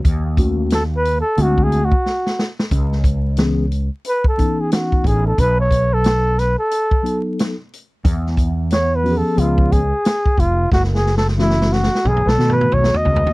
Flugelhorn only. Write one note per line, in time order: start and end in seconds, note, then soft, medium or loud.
0.74 0.83 A4 loud
0.97 1.16 B4 loud
1.20 1.44 A4 loud
1.42 1.65 F#4 medium
1.63 1.86 G#4 medium
1.85 2.50 F#4 medium
4.08 4.25 B4 medium
4.28 4.62 A4 medium
4.60 4.72 G#4 medium
4.73 5.08 F#4 medium
5.07 5.26 G#4 loud
5.26 5.41 A4 medium
5.40 5.59 B4 loud
5.60 5.95 C#5 loud
5.93 6.40 A4 loud
6.39 6.58 B4 loud
6.59 7.21 A4 loud
8.73 8.97 C#5 loud
8.96 9.19 B4 medium
9.17 9.41 A4 medium
9.39 9.73 F4 medium
9.72 10.41 G#4 loud
10.40 10.72 F4 loud
10.73 10.82 F#4 loud
10.95 11.15 G#4 medium
11.18 11.27 A4 medium
11.40 11.74 E4 loud
11.73 12.09 F#4 medium
12.07 12.25 G#4 loud
12.26 12.52 A4 loud
12.26 12.30 B4 medium
12.51 12.75 B4 loud
12.74 12.98 C#5 loud
12.97 13.33 D#5 loud